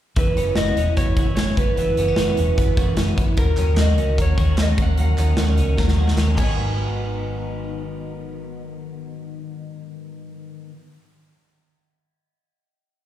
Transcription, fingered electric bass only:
0.17 0.33 F#1 medium
0.36 0.53 F#1 medium
0.57 0.73 F#1 loud
0.76 0.93 E1 medium
0.97 1.13 F#1 medium
1.17 1.34 F#1 medium
1.37 1.54 F#1 medium
1.57 1.74 F#1 medium
1.77 1.94 F#1 loud
1.97 2.14 F#1 medium
2.17 2.34 F#1 medium
2.38 2.54 E1 medium
2.58 2.74 F#1 loud
2.78 2.94 F#1 medium
2.97 3.14 F#1 loud
3.17 3.34 F#1 medium
3.37 3.54 D#2 loud
3.58 3.74 D#2 loud
3.77 3.97 D#2 medium
3.97 4.14 C#2 medium
4.18 4.35 D#2 loud
4.38 4.54 D#2 medium
4.57 4.74 D#2 medium
4.78 4.95 D#2 medium
4.97 5.14 D#2 loud
5.18 5.35 D#2 loud
5.37 5.54 D#2 loud
5.58 5.74 C#2 medium
5.79 5.95 D#2 loud
5.97 6.14 D#2 medium
6.17 6.34 D#2 loud
6.38 10.70 G#1 medium

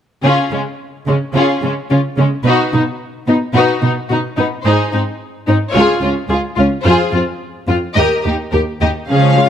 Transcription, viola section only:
0.25 0.51 C#4 soft
0.53 0.61 C#4 soft
1.09 1.17 C#4 soft
1.35 1.61 C#4 soft
1.65 1.73 C#4 soft
1.92 2.00 C#4 soft
2.19 2.27 C#4 soft
2.47 2.72 D#4 soft
2.74 2.82 D#4 soft
3.29 3.37 D#4 soft
3.56 3.81 D#4 soft
3.84 3.92 D#4 soft
4.12 4.20 D#4 soft
4.37 4.45 D#4 soft
4.65 4.91 D#4 soft
4.93 5.01 D#4 soft
5.48 5.56 D#4 soft
5.76 6.01 F4 soft
6.03 6.11 F4 soft
6.30 6.38 F4 soft
6.58 6.66 F4 soft
6.85 7.12 F4 soft
7.14 7.22 F4 soft
7.70 7.78 F4 soft
7.98 8.24 G4 soft
8.26 8.34 G4 soft
8.53 8.61 G4 soft
8.82 8.90 G4 soft
9.10 9.36 F3 soft
9.10 9.36 C#4 soft
9.37 9.49 G#3 soft
9.37 9.49 F4 soft

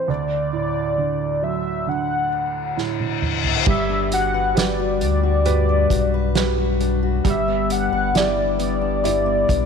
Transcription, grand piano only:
0.00 0.11 E3 soft
0.00 0.11 C4 soft
0.08 3.62 D2 medium
0.53 2.28 A2 soft
0.98 1.86 D3 soft
1.42 3.18 F#3 soft
1.87 3.62 D3 soft
2.77 3.64 A2 soft
3.66 7.21 G3 medium
4.55 5.42 F#4 soft
4.55 5.43 G4 soft
4.55 5.43 B4 soft
5.45 6.32 F#4 soft
5.45 6.33 G4 soft
5.45 6.33 B4 medium
6.35 7.22 F#4 soft
6.35 7.22 G4 soft
6.35 7.23 B4 medium
7.24 9.66 G3 medium
8.15 9.01 E4 soft
8.15 9.01 G4 soft
8.15 9.02 D5 soft
9.04 9.66 E4 soft
9.04 9.66 G4 soft
9.04 9.66 D5 medium

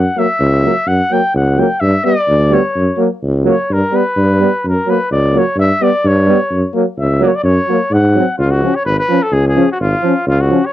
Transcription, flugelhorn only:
0.00 0.20 F#5 medium
0.19 0.89 E5 loud
0.88 1.14 F#5 medium
1.13 1.36 G5 loud
1.36 1.61 F#5 medium
1.59 1.82 G5 medium
1.80 2.06 E5 medium
2.04 2.55 D5 loud
2.54 3.00 C#5 medium
3.49 3.74 C#5 medium
3.73 3.97 A#4 medium
3.96 4.65 B4 medium
4.68 4.91 A#4 medium
4.89 5.11 B4 medium
5.12 5.40 D5 medium
5.38 5.59 C#5 medium
5.59 5.84 E5 loud
5.83 6.08 D5 loud
6.07 6.76 C#5 medium
7.00 7.25 E5 medium
7.24 7.30 D5 medium
7.28 7.37 C#5 medium
7.35 7.43 D5 medium
7.44 7.95 C#5 medium
7.93 8.37 F#5 medium
8.38 8.52 F4 medium
8.51 8.77 F#4 medium
8.76 8.85 C#5 medium
8.86 8.98 B4 medium
8.99 9.24 B4 loud
9.23 9.35 A4 medium
9.33 9.46 G#4 loud
9.49 9.69 G#4 medium
9.72 9.76 F#4 medium
9.81 10.24 F4 medium
10.28 10.42 F4 medium
10.41 10.67 F#4 medium
10.66 10.73 C#5 medium

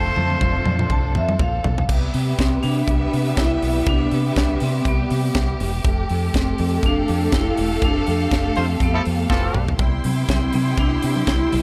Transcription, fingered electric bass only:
0.00 0.10 F1 loud
0.17 0.35 F2 medium
0.41 0.60 F1 loud
0.66 0.84 F2 loud
0.90 1.17 C2 medium
1.16 1.34 F2 loud
1.40 1.58 A#1 medium
1.65 1.83 B1 loud
1.89 2.08 C2 loud
2.14 2.33 C3 medium
2.39 2.57 C2 loud
2.64 2.82 C3 loud
2.88 3.06 C2 loud
3.13 3.32 C3 loud
3.38 3.56 C2 loud
3.63 3.81 B1 loud
3.87 4.05 C2 medium
4.12 4.30 C3 loud
4.37 4.55 C2 loud
4.62 4.80 C3 loud
4.86 5.04 C2 loud
5.11 5.29 C3 loud
5.35 5.54 C2 loud
5.60 5.79 E1 loud
5.85 6.03 F1 loud
6.10 6.28 F2 medium
6.34 6.53 F1 loud
6.60 6.78 F2 loud
6.83 7.02 F1 loud
7.09 7.27 F2 loud
7.33 7.51 F1 medium
7.58 7.76 E1 medium
7.82 8.01 F1 loud
8.08 8.26 F2 medium
8.32 8.50 F1 loud
8.57 8.75 F2 loud
8.81 8.99 F2 medium
9.07 9.25 F2 loud
9.30 9.49 F1 medium
9.55 9.74 B1 loud
9.79 9.98 C2 loud
10.05 10.23 C3 loud
10.29 10.47 C2 loud
10.55 10.73 C3 loud
10.78 10.96 C2 loud
11.04 11.22 C3 loud
11.28 11.46 C2 loud
11.53 11.62 B1 medium

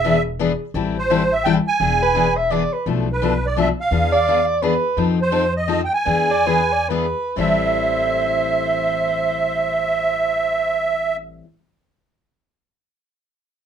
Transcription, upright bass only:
0.00 0.54 E1 medium
0.74 1.59 A1 medium
1.80 2.64 E1 medium
2.86 3.70 B1 medium
3.91 4.75 E2 medium
4.97 5.85 F2 medium
6.06 7.12 E2 medium
7.37 11.40 A1 medium

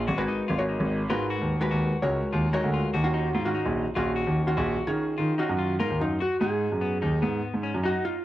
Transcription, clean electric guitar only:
0.08 0.24 F#4 medium
0.28 0.44 D#4 medium
0.48 0.64 F4 medium
0.69 1.01 D#4 medium
1.10 1.26 F4 medium
1.30 1.62 F#4 medium
1.71 2.03 F#4 medium
2.33 2.49 F4 medium
2.53 2.69 D#4 medium
2.74 2.90 F4 medium
2.94 3.10 F#4 medium
3.14 3.30 D#4 medium
3.34 3.51 F4 medium
3.54 3.87 D#4 medium
3.95 4.11 F4 medium
4.16 4.48 F#4 medium
4.57 4.89 F#4 medium
5.18 5.34 F4 medium
5.38 5.54 D#4 medium
5.58 5.75 F4 medium
5.80 6.12 F4 medium
6.20 6.36 F#4 medium
6.41 6.73 D#4 medium
6.81 6.98 B3 medium
7.02 7.18 D#4 medium
7.22 7.54 B3 medium
7.63 7.79 C#4 medium
7.84 8.16 D#4 medium

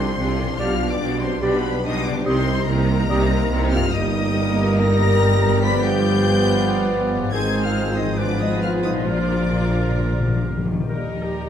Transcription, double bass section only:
0.00 0.13 C2 medium
0.18 0.55 C2 medium
0.59 0.96 B1 medium
1.01 1.38 B1 medium
1.43 1.80 B1 medium
1.85 2.22 B1 medium
2.26 2.63 C2 medium
2.68 3.05 C2 medium
3.10 3.47 C2 loud
3.52 3.89 C2 loud
3.93 7.29 G1 medium
7.33 9.04 G#1 medium
9.07 10.69 A#1 medium
10.89 11.49 D#2 medium

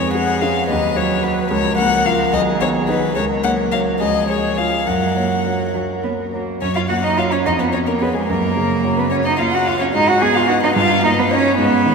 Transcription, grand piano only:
0.00 0.67 F2 soft
0.15 0.39 G#3 soft
0.15 0.39 G#4 soft
0.41 0.66 C#4 soft
0.41 0.67 G#4 soft
0.69 1.49 D#2 medium
0.97 1.21 F#3 soft
0.97 1.21 B4 soft
1.23 1.48 F#4 soft
1.23 1.48 B4 soft
1.51 2.31 C#2 medium
1.78 2.03 A#3 soft
1.78 2.03 A#4 soft
2.06 2.31 F4 soft
2.06 2.31 A#4 soft
2.33 3.14 B1 medium
2.61 2.86 B3 soft
2.61 2.86 G#4 soft
2.88 3.13 D#4 soft
2.88 3.13 G#4 soft
3.16 3.98 C#2 soft
3.44 3.70 A#3 soft
3.44 3.70 C#5 soft
3.73 3.98 F#4 soft
3.73 3.98 C#5 soft
4.01 4.85 C#2 soft
4.30 4.55 G#3 soft
4.30 4.55 C#5 soft
4.58 4.84 F4 soft
4.58 4.84 C#5 soft
4.87 6.57 F#2 soft
5.17 5.43 A#3 soft
5.17 5.43 C#5 soft
5.46 5.72 F#4 soft
5.46 5.72 C#5 soft
5.75 6.01 F#4 soft
5.75 6.01 C#5 soft
6.04 6.30 A#3 soft
6.04 6.30 C#5 soft
6.33 6.59 F#4 soft
6.33 6.59 C#5 soft
6.62 7.43 F#2 soft
6.90 7.35 A#3 soft
7.19 7.43 F#4 soft
7.19 7.43 C#5 soft
7.46 8.26 F2 soft
7.74 8.18 B3 soft
8.02 8.26 G#4 soft
8.02 8.27 C#5 soft
8.30 9.91 F#2 soft
8.57 9.01 C#3 soft
8.84 9.09 F#4 soft
8.84 9.09 C#5 soft
9.12 9.36 F#4 soft
9.12 9.37 C#5 soft
9.39 9.83 A#3 soft
9.67 9.92 F#4 soft
9.67 9.92 C#5 soft
9.94 10.74 G#2 soft
10.22 10.66 B3 soft
10.49 10.74 D#4 soft
10.49 10.74 B4 soft
10.76 11.56 G2 medium
11.03 11.47 A#3 soft
11.32 11.56 D#4 soft
11.32 11.56 D#5 soft
11.58 11.95 G#2 medium
11.86 11.95 D#3 soft

